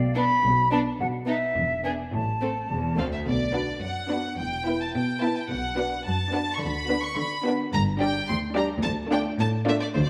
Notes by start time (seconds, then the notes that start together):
Already playing: B1 B2 D5
0.16 B3 D4 A4 B5
0.44 B1 B2
0.71 B3 D4 A4 A5
1.00 B1 B2 F#5
1.27 B3 D#4 A4 E5
1.56 E1 E2
1.84 B3 D4 G#4 G#5
2.13 A1 A2 A5
2.41 A3 C4 A4
2.69 E1 E2
2.97 D2 A3 C4 A4 F5
3.13 E5
3.26 B1 B2 D5
3.55 B3 D4 F#4 B4
3.82 F#2 F#5
4.11 B3 D4 F#4 B4
4.39 E1 E2 G5
4.66 B3 E4 B4
4.81 A5
4.94 B2 G5
5.22 B3 E4 B4 A5
5.38 G5
5.51 B1 B2 F#5
5.78 B3 D4 F#4 B4
6.06 F#2 A5
6.34 B3 D4 F#4 B4
6.55 C#6
6.61 D2 D3 B5
6.90 B3 D4 F#4 B4
7.03 C#6
7.18 D3 B5
7.45 B3 D4 F#4 B4
7.73 G1 G2 A#5
8.01 G3 D4 G4 D5 G5
8.28 D2 C6
8.56 G3 D4 G4 D5 A#5
8.83 D2 A5
9.12 A3 D4 F4 D5 G5
9.40 A2 A5
9.68 A3 D4 F4 D5 E5
9.81 D5
9.95 D2 C5
10.03 D5